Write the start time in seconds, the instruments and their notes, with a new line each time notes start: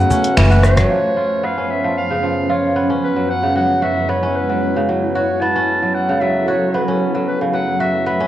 Already playing: kora C#3 F#3 B3 C#4 F#4, ambient pad A3 B4, clarinet F#5
0.11 kora C#4, cajon bass, cajon slap, shaker
0.25 closed hi-hat, shaker
0.37 upright bass F#1, kora E3, clarinet B4, finger snap, closed hi-hat, shaker
0.51 kora F#4, shaker
0.64 clarinet C#5, cross-stick, shaker
0.77 kora F#3, cajon bass, cross-stick, closed hi-hat, claves, shaker
0.90 ambient pad F#2 F3 C#4 B4, kora F3
1.17 kora F4
1.43 kora B3, clarinet F5
1.57 kora C#4
1.70 clarinet E5
1.84 kora F3
1.97 clarinet F5
2.10 kora C#3
2.23 kora F3
2.49 kora F4, clarinet C#5
2.76 kora B3
2.90 kora C#4
3.03 ambient pad G#3 E4 B4, clarinet B4
3.16 kora F#3
3.30 clarinet F#5
3.43 kora C#3
3.56 kora F#3, clarinet F#5
3.82 kora F#4, clarinet E5
4.09 kora B3, clarinet C#5
4.23 kora C#4
4.36 clarinet B4
4.49 kora F#3
4.76 kora C#3
4.89 kora F#3
5.15 ambient pad F#3 A4, kora F#4, clarinet C#5
5.41 kora B3, clarinet A5
5.55 kora C#4
5.82 kora F#3
5.94 clarinet F#5
6.09 kora C#3
6.21 kora F#3, clarinet E5
6.48 kora F#4, clarinet C#5
6.74 kora B3
6.88 kora C#4
7.15 kora F#3
7.27 ambient pad F#2 A3 B4, clarinet B4
7.41 kora C#3
7.54 kora F#3, clarinet F#5
7.80 kora F#4, clarinet E5
8.07 kora B3, clarinet E5
8.21 kora C#4